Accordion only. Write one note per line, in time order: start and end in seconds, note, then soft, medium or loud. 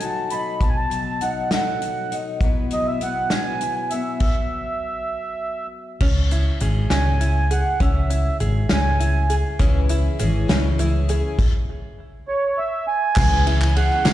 0.01 0.32 A5 medium
0.31 0.62 B5 medium
0.62 0.69 A5 medium
0.69 0.76 G#5 medium
0.77 1.23 A5 medium
1.22 1.50 F#5 medium
1.52 2.15 F#5 medium
2.73 2.86 D#5 medium
2.87 3.02 E5 medium
3.03 3.33 F#5 medium
3.33 3.74 G#5 medium
3.76 3.92 G#5 medium
3.91 4.19 E5 medium
4.20 5.67 E5 medium
6.90 7.52 G#5 medium
7.52 7.82 F#5 medium
7.82 8.37 E5 medium
8.73 9.35 G#5 loud
12.28 12.59 C#5 medium
12.58 12.86 E5 medium
12.88 13.46 G#5 loud
13.47 13.75 G#5 medium
13.76 14.13 F#5 medium